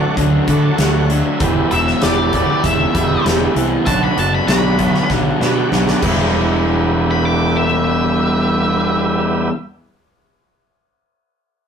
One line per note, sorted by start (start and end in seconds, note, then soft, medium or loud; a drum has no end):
0.00 0.16 D3 medium
0.00 0.16 F#3 medium
0.00 0.15 A3 medium
0.00 0.17 A3 medium
0.00 0.16 D4 medium
0.00 0.17 D4 medium
0.00 0.16 F#4 medium
0.00 0.17 F#4 medium
0.17 0.38 D2 medium
0.17 0.46 D3 medium
0.17 0.47 F#3 medium
0.17 0.48 A3 medium
0.17 0.48 D4 medium
0.17 0.48 F#4 medium
0.17 kick medium
0.17 closed hi-hat medium
0.48 0.77 D3 medium
0.48 0.69 D3 medium
0.48 0.77 F#3 medium
0.48 1.09 A3 medium
0.48 0.78 A3 medium
0.48 1.08 D4 medium
0.48 0.78 D4 medium
0.48 0.79 F#4 medium
0.48 1.10 F#4 medium
0.48 0.63 B5 medium
0.48 kick medium
0.48 closed hi-hat medium
0.62 0.77 A5 medium
0.78 1.21 D2 medium
0.78 1.09 D3 medium
0.78 1.09 F#3 medium
0.78 1.10 A3 loud
0.78 1.10 D4 medium
0.78 1.10 F#4 loud
0.78 1.09 F#5 medium
0.78 snare loud
0.78 closed hi-hat medium
1.10 1.39 D3 medium
1.10 1.39 F#3 medium
1.10 1.39 A3 medium
1.10 1.39 D4 medium
1.10 1.40 F#4 medium
1.10 1.39 E5 medium
1.10 closed hi-hat medium
1.39 1.62 E1 medium
1.39 1.71 E3 medium
1.39 1.80 B3 medium
1.39 1.72 B3 medium
1.39 1.80 E4 medium
1.39 1.71 E4 loud
1.39 1.81 G4 medium
1.39 1.71 G4 medium
1.39 kick loud
1.39 closed hi-hat medium
1.71 1.92 E1 medium
1.71 2.00 E3 medium
1.71 2.02 B3 medium
1.71 2.01 E4 medium
1.71 2.02 G4 medium
1.71 2.02 E5 medium
1.71 closed hi-hat medium
1.87 snare soft
2.01 2.45 E1 medium
2.01 2.31 E3 medium
2.01 2.62 B3 medium
2.01 2.33 B3 medium
2.01 2.62 E4 medium
2.01 2.32 E4 medium
2.01 2.62 G4 medium
2.01 2.33 G4 medium
2.01 2.33 D5 medium
2.01 snare loud
2.01 closed hi-hat medium
2.32 2.62 E3 medium
2.32 2.63 B3 medium
2.32 2.62 E4 medium
2.32 2.63 G4 medium
2.32 2.64 D5 medium
2.32 kick medium
2.32 closed hi-hat medium
2.63 2.85 E1 medium
2.63 2.93 E3 medium
2.63 2.94 B3 medium
2.63 2.94 E4 medium
2.63 2.94 G4 medium
2.63 3.25 E5 medium
2.63 kick medium
2.63 closed hi-hat medium
2.93 3.16 E1 medium
2.93 3.24 E3 medium
2.93 3.54 B3 medium
2.93 3.26 B3 medium
2.93 3.55 E4 medium
2.93 3.25 E4 medium
2.93 3.55 G4 medium
2.93 3.25 G4 medium
2.93 kick medium
2.93 closed hi-hat medium
3.25 3.46 E1 medium
3.25 3.54 E3 medium
3.25 3.55 B3 medium
3.25 3.55 E4 medium
3.25 3.55 G4 loud
3.25 snare loud
3.25 closed hi-hat medium
3.55 3.77 C2 medium
3.55 3.84 E3 medium
3.55 3.87 B3 medium
3.55 3.85 E4 medium
3.55 3.85 G4 medium
3.55 closed hi-hat medium
3.86 4.08 B1 medium
3.86 4.16 B2 loud
3.86 4.17 F#3 medium
3.86 4.27 B3 medium
3.86 4.17 B3 medium
3.86 4.27 D4 medium
3.86 4.17 D4 loud
3.86 4.28 F#4 medium
3.86 4.18 F#4 loud
3.86 4.03 A5 medium
3.86 kick medium
3.86 closed hi-hat medium
4.03 4.18 B5 medium
4.17 4.38 F#1 medium
4.17 4.47 B2 medium
4.17 4.47 F#3 medium
4.17 4.48 B3 medium
4.17 4.48 D4 medium
4.17 4.48 F#4 medium
4.17 4.34 A5 medium
4.17 closed hi-hat medium
4.35 4.47 B5 medium
4.47 4.90 B1 medium
4.47 4.78 B2 medium
4.47 4.78 F#3 medium
4.47 5.08 B3 medium
4.47 4.78 B3 medium
4.47 5.09 D4 medium
4.47 4.79 D4 medium
4.47 5.09 F#4 medium
4.47 4.79 F#4 medium
4.47 5.08 B5 medium
4.47 snare loud
4.47 closed hi-hat medium
4.79 5.08 B2 medium
4.79 5.09 F#3 medium
4.79 5.09 B3 medium
4.79 5.09 D4 medium
4.79 5.10 F#4 medium
4.79 kick medium
4.79 closed hi-hat medium
4.94 snare soft
5.09 5.31 B1 medium
5.09 5.38 B2 medium
5.09 5.39 F#3 medium
5.09 5.39 B3 medium
5.09 5.40 D4 medium
5.09 5.40 F#4 medium
5.09 kick medium
5.09 snare medium
5.40 5.69 B2 medium
5.40 5.62 B2 medium
5.40 5.70 F#3 medium
5.40 5.71 B3 medium
5.40 6.01 B3 medium
5.40 5.71 D4 medium
5.40 6.02 D4 medium
5.40 5.71 F#4 medium
5.40 6.02 F#4 medium
5.40 5.56 B5 medium
5.40 snare medium
5.58 5.72 G5 medium
5.71 5.93 B1 medium
5.71 6.02 B2 medium
5.71 6.00 F#3 medium
5.71 6.02 B3 medium
5.71 6.03 D4 medium
5.71 6.03 F#4 loud
5.71 5.86 F#5 medium
5.71 snare medium
5.87 6.03 D5 medium
5.87 snare medium
6.01 9.48 E1 medium
6.01 9.51 E3 medium
6.01 9.52 G3 medium
6.01 9.48 B3 medium
6.01 9.54 B3 medium
6.01 9.49 E4 medium
6.01 9.54 E4 loud
6.01 9.49 G4 medium
6.01 kick loud
6.01 crash medium
7.11 7.25 B5 medium
7.25 7.55 D6 medium
7.57 9.56 E5 medium